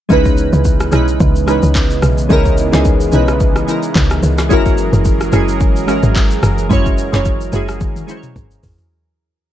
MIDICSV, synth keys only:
0, 0, Header, 1, 2, 480
1, 0, Start_track
1, 0, Tempo, 550459
1, 88, Time_signature, 4, 2, 24, 8
1, 8309, End_track
2, 0, Start_track
2, 0, Title_t, "Synth keys"
2, 0, Program_c, 0, 88
2, 76, Note_on_c, 0, 56, 116
2, 84, Note_on_c, 0, 61, 106
2, 93, Note_on_c, 0, 63, 107
2, 101, Note_on_c, 0, 64, 106
2, 109, Note_on_c, 0, 71, 127
2, 229, Control_c, 0, 64, 127
2, 668, Note_off_c, 0, 56, 0
2, 672, Note_off_c, 0, 61, 0
2, 676, Note_off_c, 0, 63, 0
2, 680, Note_off_c, 0, 64, 0
2, 684, Note_off_c, 0, 71, 0
2, 797, Note_on_c, 0, 56, 93
2, 805, Note_on_c, 0, 61, 84
2, 813, Note_on_c, 0, 63, 84
2, 821, Note_on_c, 0, 64, 81
2, 829, Note_on_c, 0, 71, 99
2, 1196, Note_off_c, 0, 56, 0
2, 1200, Note_off_c, 0, 61, 0
2, 1204, Note_off_c, 0, 63, 0
2, 1209, Note_off_c, 0, 64, 0
2, 1213, Note_off_c, 0, 71, 0
2, 1277, Note_on_c, 0, 56, 83
2, 1285, Note_on_c, 0, 61, 78
2, 1293, Note_on_c, 0, 63, 72
2, 1301, Note_on_c, 0, 64, 75
2, 1310, Note_on_c, 0, 71, 88
2, 1868, Note_off_c, 0, 56, 0
2, 1872, Note_off_c, 0, 61, 0
2, 1876, Note_off_c, 0, 63, 0
2, 1880, Note_off_c, 0, 64, 0
2, 1885, Note_off_c, 0, 71, 0
2, 1997, Note_on_c, 0, 56, 121
2, 2005, Note_on_c, 0, 61, 107
2, 2013, Note_on_c, 0, 63, 110
2, 2021, Note_on_c, 0, 64, 108
2, 2029, Note_on_c, 0, 70, 127
2, 2295, Note_off_c, 0, 56, 0
2, 2300, Note_off_c, 0, 61, 0
2, 2304, Note_off_c, 0, 63, 0
2, 2308, Note_off_c, 0, 64, 0
2, 2312, Note_off_c, 0, 70, 0
2, 2368, Note_on_c, 0, 56, 88
2, 2377, Note_on_c, 0, 61, 81
2, 2385, Note_on_c, 0, 63, 83
2, 2393, Note_on_c, 0, 64, 80
2, 2401, Note_on_c, 0, 68, 97
2, 2658, Note_off_c, 0, 56, 0
2, 2662, Note_off_c, 0, 61, 0
2, 2666, Note_off_c, 0, 63, 0
2, 2670, Note_off_c, 0, 64, 0
2, 2674, Note_off_c, 0, 68, 0
2, 2717, Note_on_c, 0, 56, 90
2, 2725, Note_on_c, 0, 61, 86
2, 2733, Note_on_c, 0, 63, 84
2, 2741, Note_on_c, 0, 64, 84
2, 2750, Note_on_c, 0, 71, 100
2, 3116, Note_off_c, 0, 56, 0
2, 3120, Note_off_c, 0, 61, 0
2, 3124, Note_off_c, 0, 63, 0
2, 3129, Note_off_c, 0, 64, 0
2, 3133, Note_off_c, 0, 71, 0
2, 3197, Note_on_c, 0, 56, 84
2, 3205, Note_on_c, 0, 61, 72
2, 3213, Note_on_c, 0, 63, 73
2, 3222, Note_on_c, 0, 64, 76
2, 3230, Note_on_c, 0, 70, 89
2, 3788, Note_off_c, 0, 56, 0
2, 3793, Note_off_c, 0, 61, 0
2, 3797, Note_off_c, 0, 63, 0
2, 3801, Note_off_c, 0, 64, 0
2, 3805, Note_off_c, 0, 70, 0
2, 3916, Note_on_c, 0, 56, 113
2, 3924, Note_on_c, 0, 61, 109
2, 3933, Note_on_c, 0, 64, 113
2, 3939, Control_c, 0, 64, 0
2, 3941, Note_on_c, 0, 66, 106
2, 3949, Note_on_c, 0, 70, 127
2, 4077, Control_c, 0, 64, 127
2, 4508, Note_off_c, 0, 56, 0
2, 4512, Note_off_c, 0, 61, 0
2, 4516, Note_off_c, 0, 64, 0
2, 4520, Note_off_c, 0, 66, 0
2, 4524, Note_off_c, 0, 70, 0
2, 4636, Note_on_c, 0, 56, 89
2, 4644, Note_on_c, 0, 61, 84
2, 4653, Note_on_c, 0, 64, 83
2, 4661, Note_on_c, 0, 66, 84
2, 4669, Note_on_c, 0, 68, 101
2, 5036, Note_off_c, 0, 56, 0
2, 5040, Note_off_c, 0, 61, 0
2, 5044, Note_off_c, 0, 64, 0
2, 5048, Note_off_c, 0, 66, 0
2, 5052, Note_off_c, 0, 68, 0
2, 5116, Note_on_c, 0, 56, 82
2, 5124, Note_on_c, 0, 61, 72
2, 5133, Note_on_c, 0, 64, 77
2, 5141, Note_on_c, 0, 66, 76
2, 5149, Note_on_c, 0, 70, 92
2, 5708, Note_off_c, 0, 56, 0
2, 5712, Note_off_c, 0, 61, 0
2, 5716, Note_off_c, 0, 64, 0
2, 5720, Note_off_c, 0, 66, 0
2, 5724, Note_off_c, 0, 70, 0
2, 5836, Note_on_c, 0, 56, 115
2, 5844, Note_on_c, 0, 61, 105
2, 5852, Note_on_c, 0, 64, 104
2, 5860, Note_on_c, 0, 66, 105
2, 5869, Note_on_c, 0, 73, 127
2, 6135, Note_off_c, 0, 56, 0
2, 6139, Note_off_c, 0, 61, 0
2, 6143, Note_off_c, 0, 64, 0
2, 6147, Note_off_c, 0, 66, 0
2, 6151, Note_off_c, 0, 73, 0
2, 6208, Note_on_c, 0, 56, 91
2, 6216, Note_on_c, 0, 61, 86
2, 6224, Note_on_c, 0, 64, 82
2, 6232, Note_on_c, 0, 66, 82
2, 6240, Note_on_c, 0, 73, 103
2, 6497, Note_off_c, 0, 56, 0
2, 6501, Note_off_c, 0, 61, 0
2, 6506, Note_off_c, 0, 64, 0
2, 6510, Note_off_c, 0, 66, 0
2, 6514, Note_off_c, 0, 73, 0
2, 6556, Note_on_c, 0, 56, 90
2, 6564, Note_on_c, 0, 61, 88
2, 6573, Note_on_c, 0, 64, 81
2, 6581, Note_on_c, 0, 66, 84
2, 6589, Note_on_c, 0, 68, 102
2, 6956, Note_off_c, 0, 56, 0
2, 6960, Note_off_c, 0, 61, 0
2, 6964, Note_off_c, 0, 64, 0
2, 6968, Note_off_c, 0, 66, 0
2, 6972, Note_off_c, 0, 68, 0
2, 7036, Note_on_c, 0, 56, 83
2, 7045, Note_on_c, 0, 61, 74
2, 7053, Note_on_c, 0, 64, 72
2, 7061, Note_on_c, 0, 66, 76
2, 7069, Note_on_c, 0, 72, 70
2, 7121, Note_off_c, 0, 72, 0
2, 7126, Note_on_c, 0, 73, 92
2, 7628, Note_off_c, 0, 56, 0
2, 7632, Note_off_c, 0, 61, 0
2, 7636, Note_off_c, 0, 64, 0
2, 7640, Note_off_c, 0, 66, 0
2, 7673, Note_off_c, 0, 73, 0
2, 7778, Control_c, 0, 64, 0
2, 8309, End_track
0, 0, End_of_file